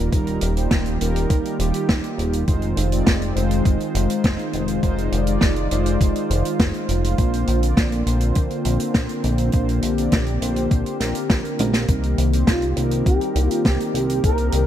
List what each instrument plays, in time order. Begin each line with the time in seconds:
Already playing: analog synth pad D#3 G3 A#3 F4
0.12 analog synth bass D#1, analog polysynth G3 D#4 F4 A#4, analog synth pad G4, kick, closed hi-hat
0.27 closed hi-hat
0.41 analog synth bass D#1, closed hi-hat
0.57 analog polysynth G3 D#4 F4 C5, closed hi-hat
0.71 analog synth bass D#1, kick, snare, closed hi-hat
0.86 closed hi-hat
1.01 analog synth bass D#1, analog polysynth G3 D#4 F4 A#4, closed hi-hat
1.16 closed hi-hat
1.30 analog synth bass D#1, kick, closed hi-hat
1.45 closed hi-hat
1.59 analog synth bass D#1, analog polysynth G3 D#4 F4 G4, closed hi-hat
1.74 closed hi-hat
1.89 analog synth bass D#1, kick, snare, closed hi-hat
2.04 closed hi-hat
2.18 analog synth bass D#1, closed hi-hat
2.33 closed hi-hat
2.47 analog synth bass F1, analog polysynth G#3 D#4 F4 C5, analog synth pad G#3 C4 F4, kick, closed hi-hat
2.62 closed hi-hat
2.77 analog synth bass F1, closed hi-hat
2.92 analog polysynth G#3 D#4 F4 D5, closed hi-hat
3.07 analog synth bass F1, kick, snare, closed hi-hat
3.22 closed hi-hat
3.36 analog synth bass F1, analog polysynth G#3 D#4 F4 C5, closed hi-hat
3.51 closed hi-hat
3.65 analog synth bass F1, kick, closed hi-hat
3.80 closed hi-hat
3.95 analog synth bass F1, closed hi-hat
4.10 closed hi-hat
4.24 analog synth bass F1, kick, snare, closed hi-hat
4.39 closed hi-hat
4.53 analog synth bass F1, closed hi-hat
4.68 closed hi-hat
4.83 analog synth bass F1, analog polysynth G#3 D#4 F4 C5, analog synth pad D5, kick, closed hi-hat
4.98 closed hi-hat
5.12 analog synth bass F1, closed hi-hat
5.27 analog polysynth G#3 D#4 F4 D5, closed hi-hat
5.41 analog synth bass F1, kick, snare, closed hi-hat
5.56 closed hi-hat
5.71 analog synth bass F1, analog polysynth G#3 D#4 F4 C5, closed hi-hat
5.86 closed hi-hat
6.01 analog synth bass F1, kick, closed hi-hat
6.16 closed hi-hat
6.30 analog synth bass F1, closed hi-hat
6.45 closed hi-hat
6.60 analog synth bass F1, kick, snare, closed hi-hat
6.74 closed hi-hat
6.89 analog synth bass F1, closed hi-hat
7.04 closed hi-hat
7.18 analog synth bass A#1, analog synth pad D3 A#3 C4, analog polysynth A#3 D4 F4 C5, kick, closed hi-hat
7.33 closed hi-hat
7.47 analog synth bass A#1, closed hi-hat
7.62 analog polysynth A#3 D4 F4 D5, closed hi-hat
7.77 analog synth bass A#1, kick, snare, closed hi-hat
7.92 closed hi-hat
8.06 analog synth bass A#1, analog polysynth A#3 D4 F4 C5, closed hi-hat
8.20 closed hi-hat
8.35 analog synth bass A#1, kick, closed hi-hat
8.50 closed hi-hat
8.65 analog synth bass A#1, closed hi-hat
8.80 closed hi-hat
8.94 analog synth bass A#1, kick, snare, closed hi-hat
9.09 closed hi-hat
9.24 analog synth bass A#1, closed hi-hat
9.38 closed hi-hat
9.52 analog synth bass A#1, analog polysynth A#3 D4 F4 C5, analog synth pad G4, kick, closed hi-hat
9.69 closed hi-hat
9.82 analog synth bass A#1, closed hi-hat
9.98 analog polysynth A#3 D4 F4 D5, closed hi-hat
10.12 analog synth bass A#1, kick, snare, closed hi-hat
10.26 closed hi-hat
10.41 analog synth bass A#1, analog polysynth A#3 D4 F4 C5, closed hi-hat
10.56 closed hi-hat
10.71 analog synth bass A#1, kick, closed hi-hat
10.86 closed hi-hat
11.00 analog synth bass A#1, analog polysynth A#3 D4 F4 A#4, snare, closed hi-hat
11.15 closed hi-hat
11.30 analog synth bass A#1, kick, snare, closed hi-hat
11.45 closed hi-hat
11.59 analog synth bass A#1, closed hi-hat, high tom
11.73 snare, closed hi-hat
11.88 analog synth bass C2, analog synth pad D#3 C4 G4, analog polysynth G3 C4 D#4 A#4, kick, closed hi-hat
12.03 closed hi-hat
12.18 analog synth bass C2, closed hi-hat
12.33 analog polysynth G3 C4 D#4 C5, closed hi-hat
12.47 analog synth bass C2, analog synth lead F4, kick, snare, closed hi-hat
12.62 closed hi-hat
12.77 analog synth bass C2, analog polysynth G3 C4 D#4 A#4, closed hi-hat
12.91 closed hi-hat
13.06 analog synth bass C2, analog synth lead G4, kick, closed hi-hat
13.21 closed hi-hat
13.36 analog synth bass C2, closed hi-hat
13.49 analog synth lead F4, closed hi-hat
13.65 analog synth bass C2, analog synth lead G4, kick, snare, closed hi-hat
13.80 closed hi-hat
13.94 analog synth bass C2, closed hi-hat
14.09 closed hi-hat
14.24 analog synth bass C2, analog polysynth G3 C4 D#4 A#4, analog synth lead A#4, kick, closed hi-hat
14.38 closed hi-hat
14.52 analog synth bass C2, closed hi-hat